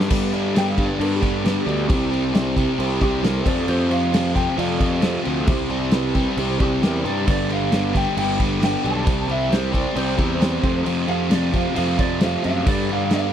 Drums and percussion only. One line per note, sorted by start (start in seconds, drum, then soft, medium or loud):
0.00 snare medium
0.10 kick loud
0.10 crash loud
0.10 crash medium
0.34 crash medium
0.56 snare loud
0.56 crash medium
0.78 kick medium
0.78 crash medium
1.01 crash medium
1.23 kick medium
1.23 crash medium
1.46 snare loud
1.46 crash medium
1.69 crash medium
1.90 kick loud
1.90 crash medium
2.13 crash medium
2.35 snare loud
2.35 crash medium
2.57 kick medium
2.57 crash medium
2.80 crash medium
3.01 kick medium
3.01 crash medium
3.24 snare loud
3.24 crash medium
3.46 kick loud
3.46 crash medium
3.68 crash medium
3.91 crash medium
4.14 snare loud
4.14 crash medium
4.36 kick medium
4.36 crash medium
4.59 crash medium
4.80 kick medium
4.80 crash medium
5.02 snare loud
5.02 crash medium
5.25 crash medium
5.47 kick loud
5.47 crash medium
5.70 crash medium
5.91 snare loud
5.91 crash medium
6.15 kick medium
6.15 crash medium
6.37 crash medium
6.60 kick medium
6.60 crash medium
6.83 snare loud
6.83 crash medium
7.06 crash medium
7.27 kick loud
7.27 crash medium
7.50 crash medium
7.72 snare loud
7.72 crash medium
7.95 kick medium
7.95 crash medium
8.17 crash loud
8.40 kick medium
8.40 crash medium
8.62 snare loud
8.62 crash medium
8.86 crash medium
9.07 kick loud
9.07 crash medium
9.29 crash medium
9.52 snare loud
9.52 crash medium
9.74 kick medium
9.74 crash medium
9.96 crash medium
10.18 kick medium
10.18 crash medium
10.42 snare loud
10.42 crash medium
10.63 kick medium
10.63 crash medium
10.86 crash medium
11.08 crash medium
11.31 snare loud
11.31 crash medium
11.53 kick medium
11.53 crash medium
11.76 crash medium
11.99 kick medium
11.99 crash medium
12.21 snare loud
12.21 crash medium
12.44 crash medium
12.67 kick loud
12.67 crash loud
12.89 crash medium
13.10 snare loud
13.10 crash medium